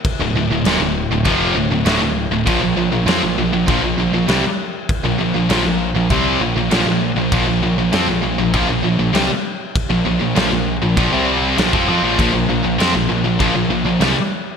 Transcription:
<<
  \new Staff \with { instrumentName = "Distorted electric guitar" } { \clef bass \time 4/4 \key bes \lydian \tempo 4 = 99 r16 <d, a,>16 <d, a,>16 <d, a,>16 <ees, bes,>16 <d, a,>8 <d, a,>16 <f, c f>8 <d, a,>16 <d, a,>16 <d, a,>16 <d, a,>8 <d, a,>16 | <bes, f>16 <bes, f>16 <bes, f>16 <bes, f>16 <f c'>16 <bes, f>16 <bes, f>16 <bes, f>16 <bes, f>16 <bes, f>16 <bes, f>16 <bes, f>16 <c g>16 r8. | r16 <bes, f>16 <bes, f>16 <bes, f>16 <bes, f>16 <bes, f>8 <bes, f>16 <c g c'>8 <bes, f>16 <bes, f>16 <bes, f>16 <bes, f>8 <bes, f>16 | <bes, f>16 <bes, f>16 <bes, f>16 <bes, f>16 <f c'>16 <bes, f>16 <bes, f>16 <bes, f>16 <bes, f>16 <bes, f>16 <bes, f>16 <bes, f>16 <c g>16 r8. |
r16 <bes, f>16 <bes, f>16 <bes, f>16 <bes, f>16 <bes, f>8 <bes, f>16 <bes, f>16 <c g c'>8. <bes, f>16 <f c'>16 <f c'>16 <bes, f>16 | <bes, f>16 <bes, f>16 <bes, f>16 <bes, f>16 <f c'>16 <bes, f>16 <bes, f>16 <bes, f>16 <bes, f>16 <bes, f>16 <bes, f>16 <bes, f>16 <c g>16 r8. | }
  \new Staff \with { instrumentName = "Distorted electric guitar" } { \clef bass \time 4/4 \key bes \lydian r16 <d, a,>16 <d, a,>16 <d, a,>16 <ees, bes,>16 <d, a,>8 <d, a,>16 <f, c f>8 <d, a,>16 <d, a,>16 <d, a,>16 <d, a,>8 <d, a,>16 | <bes, f>16 <bes, f>16 <bes, f>16 <bes, f>16 <f c'>16 <bes, f>16 <bes, f>16 <bes, f>16 <bes, f>16 <bes, f>16 <bes, f>16 <bes, f>16 <c g>16 r8. | r16 <bes, f>16 <bes, f>16 <bes, f>16 <bes, f>16 <bes, f>8 <bes, f>16 <c g c'>8 <bes, f>16 <bes, f>16 <bes, f>16 <bes, f>8 <bes, f>16 | <bes, f>16 <bes, f>16 <bes, f>16 <bes, f>16 <f c'>16 <bes, f>16 <bes, f>16 <bes, f>16 <bes, f>16 <bes, f>16 <bes, f>16 <bes, f>16 <c g>16 r8. |
r16 <bes, f>16 <bes, f>16 <bes, f>16 <bes, f>16 <bes, f>8 <bes, f>16 <bes, f>16 <c g c'>8. <bes, f>16 <f c'>16 <f c'>16 <bes, f>16 | <bes, f>16 <bes, f>16 <bes, f>16 <bes, f>16 <f c'>16 <bes, f>16 <bes, f>16 <bes, f>16 <bes, f>16 <bes, f>16 <bes, f>16 <bes, f>16 <c g>16 r8. | }
  \new Staff \with { instrumentName = "Distorted electric guitar" } { \clef bass \time 4/4 \key bes \lydian r16 <d, a,>16 <d, a,>16 <d, a,>16 <ees, bes,>16 <d, a,>8 <d, a,>16 <f, c f>8 <d, a,>16 <d, a,>16 <d, a,>16 <d, a,>8 <d, a,>16 | <bes, f>16 <bes, f>16 <bes, f>16 <bes, f>16 <f c'>16 <bes, f>16 <bes, f>16 <bes, f>16 <bes, f>16 <bes, f>16 <bes, f>16 <bes, f>16 <c g>16 r8. | r16 <bes, f>16 <bes, f>16 <bes, f>16 <bes, f>16 <bes, f>8 <bes, f>16 <c g c'>8 <bes, f>16 <bes, f>16 <bes, f>16 <bes, f>8 <bes, f>16 | <bes, f>16 <bes, f>16 <bes, f>16 <bes, f>16 <f c'>16 <bes, f>16 <bes, f>16 <bes, f>16 <bes, f>16 <bes, f>16 <bes, f>16 <bes, f>16 <c g>16 r8. |
r16 <bes, f>16 <bes, f>16 <bes, f>16 <bes, f>16 <bes, f>8 <bes, f>16 <bes, f>16 <c g c'>8. <bes, f>16 <f c'>16 <f c'>16 <bes, f>16 | <bes, f>16 <bes, f>16 <bes, f>16 <bes, f>16 <f c'>16 <bes, f>16 <bes, f>16 <bes, f>16 <bes, f>16 <bes, f>16 <bes, f>16 <bes, f>16 <c g>16 r8. | }
  \new Staff \with { instrumentName = "Picked electric bass" } { \clef bass \time 4/4 \key bes \lydian r16 d,,16 d,,16 d,,16 ees,,16 d,,8 d,,16 f,,8 d,,16 d,,16 d,,16 d,,8 d,,16 | bes,,16 bes,,16 bes,,16 bes,,16 f,16 bes,,16 bes,,16 bes,,16 bes,,16 bes,,16 bes,,16 bes,,16 c,16 r8. | r16 bes,,16 bes,,16 bes,,16 bes,,16 bes,,8 bes,,16 c,8 bes,,16 bes,,16 bes,,16 bes,,8 bes,,16 | bes,,16 bes,,16 bes,,16 bes,,16 f,16 bes,,16 bes,,16 bes,,16 bes,,16 bes,,16 bes,,16 bes,,16 c,16 r8. |
r16 bes,,16 bes,,16 bes,,16 bes,,16 bes,,8 bes,,16 bes,,16 c,8. bes,,16 f,16 f,16 bes,,16 | bes,,16 bes,,16 bes,,16 bes,,16 f,16 bes,,16 bes,,16 bes,,16 bes,,16 bes,,16 bes,,16 bes,,16 c,16 r8. | }
  \new DrumStaff \with { instrumentName = "Drums" } \drummode { \time 4/4 <cymc bd>4 <cymc sn>4 <cymc bd>4 <cymc sn>4 | <cymc bd>4 <cymc sn>4 <cymc bd>4 <cymc sn>4 | <cymc bd>4 <cymc sn>4 <cymc bd>4 <cymc sn>4 | <cymc bd>4 <cymc sn>4 <cymc bd>4 <cymc sn>4 |
<cymc bd>4 <cymc sn>4 <cymc bd>4 <cymc sn>16 bd8. | <cymc bd>4 <cymc sn>4 <cymc bd>4 <cymc sn>4 | }
>>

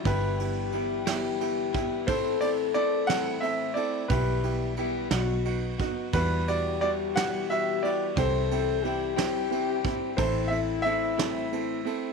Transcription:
<<
  \new Staff \with { instrumentName = "Grand piano" } { \time 6/8 \key e \minor \tempo 4. = 59 b'2~ b'8 r8 | c''8 d''8 d''8 fis''8 e''8 d''8 | b'2~ b'8 r8 | b'8 d''8 d''8 fis''8 e''8 d''8 |
c''2~ c''8 r8 | c''8 e''8 e''2 | }
  \new Staff \with { instrumentName = "French horn section" } { \time 6/8 \key e \minor g'2. | a'2~ a'8 r8 | g'4 g'8 fis'4 r8 | g'2. |
a'4 g'2 | e'2~ e'8 r8 | }
  \new Staff \with { instrumentName = "Upright piano" } { \time 6/8 \key e \minor <b e' g'>8 <b e' g'>8 <b e' g'>8 <b e' g'>8 <b e' g'>8 <b e' g'>8 | <c' e' a'>8 <c' e' a'>8 <c' e' a'>8 <c' e' a'>8 <c' e' a'>8 <c' e' a'>8 | <b e' g'>8 <b e' g'>8 <b e' g'>8 <b dis' fis'>8 <b dis' fis'>8 <b dis' fis'>8 | <g e' fis'>8 <g e' fis'>8 <g e' fis'>8 <g e' fis'>8 <g e' fis'>8 <g e' fis'>8 |
<c' e' g'>8 <c' e' g'>8 <c' e' g'>8 <c' e' g'>8 <c' e' g'>8 <c' e' g'>8 | <c' e' a'>8 <c' e' a'>8 <c' e' a'>8 <c' e' a'>8 <c' e' a'>8 <c' e' a'>8 | }
  \new Staff \with { instrumentName = "Clean electric guitar" } { \time 6/8 \key e \minor <g, d e g b e'>4 <e g b e'>8 <g, d e g b e'>4 <e g b e'>8 | <a, e a c' e'>4 <e a c' e'>8 <a, e a c' e'>4 <a c' e'>8 | <b, e g b e'>4 <e g b e'>8 <b, fis b dis' fis'>4 <b dis' fis'>8 | <e, b, e g b>4 <e g b>8 <e, b, e g b>4 <e g b>8 |
<c e g c' e'>4 <e g c' e'>8 <c e g c' e'>4 <g c' e'>8 | <a, e a c' e'>4 <e a c' e'>8 <a, e a c' e'>4 <a c' e'>8 | }
  \new Staff \with { instrumentName = "Fingered electric bass" } { \clef bass \time 6/8 \key e \minor g,,2. | a,,2. | b,,4. b,,4 r8 | e,2. |
c,2. | a,,2. | }
  \new DrumStaff \with { instrumentName = "Drums" } \drummode { \time 6/8 <bd cymr>8 cymr8 cymr8 <cymr sn>8 cymr8 <bd cymr>8 | <bd cymr>8 cymr8 cymr8 <cymr sn>8 cymr8 cymr8 | <bd cymr>8 cymr8 cymr8 <cymr sn>8 cymr8 <bd cymr>8 | <bd cymr>8 cymr8 cymr8 <cymr sn>8 cymr8 cymr8 |
<bd cymr>8 cymr8 cymr8 <cymr sn>8 cymr8 <bd cymr>8 | <bd cymr>8 cymr8 cymr8 <cymr sn>8 cymr8 cymr8 | }
>>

